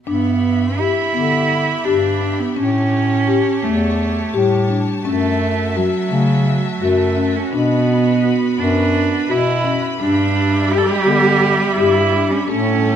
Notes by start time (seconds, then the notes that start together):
0.07 G2 B3 D4 G4 E5 B5
0.79 E4 G4
1.14 D3 B3
1.85 G2 D4 G4
2.21 D4
2.39 B3
2.56 A2 C#4 C#5 A5
3.27 G4
3.62 E2 A3
4.33 A2 G3 G4
4.69 D4
5.04 F#2 A3 C#4 F#4 E5
5.76 F#3 F#4
6.10 C#3 A3
6.81 F#2 A3 F#4
7.17 C#4
7.36 C#4
7.52 B2 B3 D4 B4 B5
8.23 F#4
8.58 F#2 B3 D4
9.29 B2 E4 F#4
9.64 C#4
9.99 G2 G3 D4 G4 E5
10.71 G4
10.78 A4
10.85 G4
11.06 D3 B3
11.77 G2 E4 G4
12.13 D4
12.31 C#4
12.48 A2 G3 A3 C#4 C#5 A5